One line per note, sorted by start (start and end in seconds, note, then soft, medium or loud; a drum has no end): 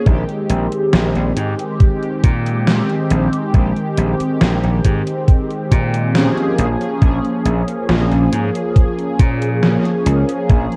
0.05 0.23 A#1 medium
0.05 2.61 D#3 medium
0.05 2.62 G#3 medium
0.05 2.62 C4 medium
0.05 2.63 G4 medium
0.05 kick loud
0.05 closed hi-hat soft
0.29 closed hi-hat soft
0.50 0.66 A#1 medium
0.50 closed hi-hat medium
0.72 closed hi-hat soft
0.93 1.10 A#1 medium
0.93 snare loud
0.93 closed hi-hat soft
1.15 1.31 A#1 medium
1.15 closed hi-hat soft
1.37 1.53 G#2 medium
1.37 closed hi-hat medium
1.59 closed hi-hat soft
1.80 kick loud
1.80 closed hi-hat soft
2.03 closed hi-hat soft
2.24 2.80 A#2 medium
2.24 kick loud
2.24 closed hi-hat medium
2.46 closed hi-hat soft
2.67 3.49 D#3 medium
2.67 3.49 G#3 medium
2.67 3.49 C4 medium
2.67 3.50 G4 medium
2.67 snare loud
2.67 closed hi-hat soft
2.89 closed hi-hat soft
3.10 3.27 A#1 medium
3.10 closed hi-hat medium
3.33 closed hi-hat soft
3.53 3.71 A#1 loud
3.53 6.09 D#3 medium
3.53 6.10 G#3 medium
3.53 6.10 C4 medium
3.53 6.11 G4 medium
3.53 kick loud
3.53 closed hi-hat soft
3.76 closed hi-hat soft
3.98 4.14 A#1 medium
3.98 closed hi-hat medium
4.20 muted slap bass stroke soft
4.20 closed hi-hat soft
4.41 4.58 A#1 medium
4.41 snare loud
4.41 closed hi-hat soft
4.64 4.79 A#1 medium
4.64 closed hi-hat soft
4.85 5.01 G#2 medium
4.85 kick medium
4.85 closed hi-hat medium
5.07 closed hi-hat soft
5.28 kick loud
5.28 closed hi-hat soft
5.50 closed hi-hat soft
5.71 6.28 A#2 medium
5.71 kick medium
5.71 closed hi-hat medium
5.94 closed hi-hat soft
6.14 6.96 F3 medium
6.14 6.97 A#3 medium
6.14 6.97 C#4 medium
6.14 6.97 G#4 medium
6.14 snare loud
6.14 closed hi-hat soft
6.37 closed hi-hat soft
6.59 6.75 A#1 medium
6.59 closed hi-hat medium
6.81 closed hi-hat soft
7.00 7.19 A#1 loud
7.00 9.57 F3 medium
7.00 9.57 A#3 medium
7.00 9.58 C#4 medium
7.00 9.58 G#4 medium
7.00 kick loud
7.00 closed hi-hat soft
7.25 closed hi-hat soft
7.45 7.62 A#1 medium
7.45 closed hi-hat medium
7.68 closed hi-hat soft
7.89 8.06 A#1 medium
7.89 snare loud
7.89 closed hi-hat soft
8.11 8.27 A#1 medium
8.11 closed hi-hat soft
8.32 8.49 G#2 medium
8.32 closed hi-hat medium
8.55 closed hi-hat medium
8.76 kick loud
8.76 closed hi-hat soft
8.98 closed hi-hat soft
9.19 9.76 A#2 medium
9.19 kick loud
9.19 closed hi-hat medium
9.42 closed hi-hat medium
9.62 10.44 F3 medium
9.62 10.45 A#3 medium
9.62 10.45 C#4 medium
9.62 10.45 G#4 medium
9.62 snare loud
9.62 closed hi-hat medium
9.85 closed hi-hat soft
10.06 10.23 C#2 medium
10.06 closed hi-hat medium
10.29 closed hi-hat medium
10.48 10.66 A#1 loud
10.48 10.76 F3 medium
10.48 10.76 A#3 medium
10.48 10.76 C#4 medium
10.48 10.76 G#4 medium
10.48 kick loud
10.48 closed hi-hat medium
10.72 closed hi-hat soft